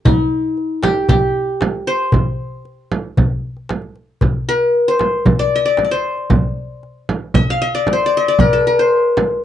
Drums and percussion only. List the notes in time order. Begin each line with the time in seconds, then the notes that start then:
0.05 darbuka dum, frame drum
0.57 darbuka ka
0.83 darbuka tek, frame drum
1.09 darbuka dum, frame drum
1.61 darbuka tek, frame drum
2.12 darbuka dum, frame drum
2.65 darbuka ka
2.92 frame drum
3.17 darbuka dum, frame drum
3.57 darbuka ka
3.69 darbuka tek, frame drum
3.82 darbuka ka
3.96 darbuka ka
4.21 darbuka dum, frame drum
4.74 darbuka ka
4.99 darbuka tek, frame drum
5.26 darbuka dum, frame drum
5.52 darbuka ka
5.77 darbuka tek, frame drum
5.91 darbuka ka
6.04 darbuka ka
6.17 darbuka ka
6.30 darbuka dum, frame drum
6.83 darbuka ka
7.09 frame drum
7.34 frame drum, darbuka dum
7.61 darbuka ka
7.87 darbuka tek, frame drum
8.01 darbuka ka
8.14 darbuka ka
8.27 darbuka ka
8.39 frame drum, darbuka dum
8.91 darbuka ka
9.17 darbuka tek, frame drum